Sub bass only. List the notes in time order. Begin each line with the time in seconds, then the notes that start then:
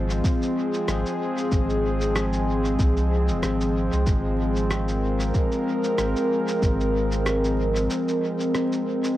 Already playing: G#1
0.88 G#1
1.52 G#1
2.79 C2
3.29 D#1
3.43 G#1
3.93 C2
4.07 G#1
5.98 G#1
6.62 G#1